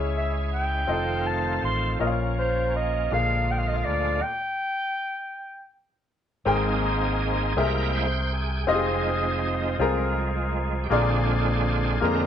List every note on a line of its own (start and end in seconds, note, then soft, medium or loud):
0.00 0.84 C#2 medium
0.00 0.84 C#3 medium
0.00 0.85 G#3 medium
0.00 0.61 C#4 medium
0.00 0.87 C#4 soft
0.00 0.61 E4 medium
0.00 0.87 E4 medium
0.00 0.61 G#4 medium
0.00 0.62 E5 medium
0.17 0.33 E5 medium
0.52 1.28 G5 medium
0.87 1.58 F1 medium
0.87 1.99 D#3 medium
0.87 4.20 F3 soft
0.87 1.99 A3 soft
0.87 1.72 C4 medium
0.87 1.99 C4 medium
0.87 1.72 F4 soft
0.87 1.99 F4 medium
0.87 1.73 A4 medium
0.87 1.73 D#5 medium
1.27 1.63 A5 medium
1.63 1.97 A1 medium
1.63 1.98 C6 medium
1.99 3.08 A#1 medium
1.99 3.08 A#2 soft
1.99 4.20 A#3 soft
1.99 3.10 C#4 medium
1.99 2.84 C#4 medium
1.99 2.84 F4 medium
1.99 2.85 A#4 medium
1.99 2.07 D#5 medium
2.07 2.88 F5 medium
2.38 2.77 C5 medium
2.76 3.12 D#5 medium
3.10 3.82 A#1 medium
3.10 4.19 A#2 medium
3.10 4.22 D3 soft
3.10 4.22 G#3 medium
3.10 3.96 D4 medium
3.10 4.21 F4 medium
3.10 3.96 G#4 soft
3.10 3.97 A#4 medium
3.10 3.53 F5 medium
3.10 3.97 F5 medium
3.51 3.60 G5 medium
3.59 3.70 F5 medium
3.68 3.78 D#5 medium
3.76 3.86 F5 medium
3.85 4.21 D2 medium
3.85 4.24 D5 medium
4.22 5.71 G5 medium
6.45 7.53 G#1 loud
6.45 7.54 G#2 medium
6.45 7.53 G#3 soft
6.45 7.53 A#3 soft
6.45 7.30 C4 medium
6.45 7.53 C4 medium
6.45 7.53 D#4 medium
6.45 7.61 G#4 medium
6.45 7.31 G#4 medium
6.45 7.31 A#4 medium
6.45 7.31 G5 medium
7.57 8.64 C2 loud
7.57 8.65 C3 medium
7.57 8.06 G#3 medium
7.57 8.07 A#3 soft
7.57 8.41 C4 medium
7.57 8.07 E4 medium
7.57 8.42 G#4 medium
7.57 8.42 A#4 medium
7.57 7.92 A#4 medium
7.57 8.42 E5 medium
7.57 8.65 G5 medium
7.94 8.32 C5 loud
8.32 8.69 G#4 medium
8.67 9.75 F1 loud
8.67 10.87 F3 soft
8.67 10.87 G#3 soft
8.67 9.52 C4 medium
8.67 9.76 C4 medium
8.67 9.76 D#4 medium
8.67 9.53 F4 medium
8.67 8.75 G4 medium
8.67 9.49 G#4 medium
8.67 9.53 D#5 medium
8.75 9.56 G#4 medium
9.79 10.86 C2 medium
9.79 10.64 C4 medium
9.79 10.64 F4 medium
9.79 10.64 G#4 medium
9.79 10.65 A#4 medium
10.84 10.91 G4 medium
10.90 11.98 A#1 loud
10.90 11.98 A#2 medium
10.90 11.98 D3 medium
10.90 11.98 G#3 soft
10.90 11.75 A#3 medium
10.90 11.98 C4 medium
10.90 11.98 D4 medium
10.90 11.75 F4 medium
10.90 11.98 F4 medium
10.90 12.05 G#4 medium
10.90 11.75 G#4 medium
10.90 11.76 D5 medium
12.00 12.27 F2 medium
12.00 12.27 D3 soft
12.00 12.27 G#3 soft
12.00 12.27 A#3 medium
12.00 12.27 F4 medium
12.00 12.27 G#4 medium
12.00 12.27 A#4 medium
12.04 12.27 C4 medium